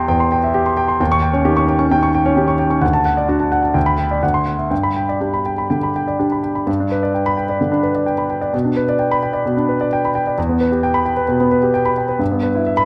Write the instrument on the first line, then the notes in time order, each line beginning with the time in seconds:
grand piano
Already playing: E2 G4 E5 G5 C6
0.08 E2 G5
0.20 C6
0.32 G5
0.44 E5
0.54 G4
0.66 C6
0.77 G5
0.88 C6
1.00 D#2 G5
1.12 C#6
1.22 G5
1.33 C#4 C#5
1.45 D#3 G4
1.57 C#6
1.69 G5
1.79 C#4 C#6
1.91 D#3 G5
2.03 C#6
2.15 G5
2.26 C#4 C#5
2.36 D#3 G4
2.48 C#6
2.59 G5
2.70 C#4 C#6
2.82 D2 F#5
2.93 A5
3.05 F#5
3.17 D5
3.29 D4 F#4
3.40 A5
3.52 F#5
3.63 A5
3.74 D2 G5
3.86 B5
3.99 G5
4.11 D5
4.23 D2 F#5
4.34 C6
4.46 F#5
4.58 E5
4.71 G2 G5
4.83 B5
4.96 G5
5.09 D5
5.21 D4 G4
5.34 B5
5.46 G5
5.58 B5
5.70 D3 G5
5.83 B5
5.96 G5
6.08 D5
6.19 D4 G4
6.32 B5
6.43 G5
6.55 B5
6.67 G2
6.80 D4
6.92 B4
7.03 D5
7.14 G5
7.26 B5
7.37 G5
7.49 D5
7.61 D3
7.72 D4
7.83 B4
7.95 D5
8.06 G5
8.18 B5
8.30 G5
8.41 D5
8.53 B2
8.65 D4
8.77 B4
8.89 D5
8.99 G5
9.11 B5
9.23 G5
9.33 D5
9.45 B2
9.57 D4
9.69 B4
9.81 D5
9.93 G5
10.05 B5
10.15 G5
10.27 D5
10.38 E2
10.49 B3
10.61 B4
10.72 G4
10.83 G5
10.94 B5
11.06 G5
11.17 B4
11.28 B2
11.40 B3
11.52 B4
11.63 G4
11.74 G5
11.85 B5
11.98 G5
12.09 B4
12.19 G2
12.31 B3
12.43 B4
12.55 E4
12.66 E5
12.77 B5